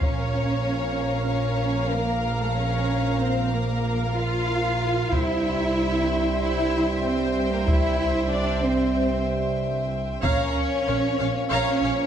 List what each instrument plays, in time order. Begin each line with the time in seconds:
0.00 double bass section A#1, trombone section A#2 F3, cello section C#4, viola section A#4 F5, french horn section A#4 F5, violin section C#5 F5 A#5, taiko
1.28 cello section C#4, violin section C#5
1.92 cello section A#3, violin section A#4
2.41 cello section A3, violin section A4
2.55 cello section C#4, violin section C#5
3.19 cello section C4, violin section C5
3.53 cello section A#3, violin section A#4
4.16 cello section F4, violin section F5
5.12 double bass section C2, trombone section G2 G3, cello section E4, french horn section C5 E5, viola section C5, violin section E5 G5, taiko
6.39 cello section E4, violin section E5
7.03 cello section C4, violin section C5
7.51 cello section A#3, violin section A#4
7.67 cello section E4, violin section E5, taiko
8.30 cello section D4, violin section D5
8.62 cello section C4, violin section C5
10.21 double bass section A#1, trombone section A#2, cello section C#4, french horn section A#4 F5, viola section C#5 F5, violin section C#5 F5 A#5, taiko
10.25 trombone section F3
10.87 double bass section A#1, violin section A#4 C#5, viola section C#5 F5
11.19 double bass section A#1, viola section C#5 F5, violin section C#5 F5
11.49 double bass section A#1, cello section C#4, viola section C#5 F5, violin section C#5 F5 A#5
11.83 double bass section A#1, viola section C#5 F5, violin section C#5 F5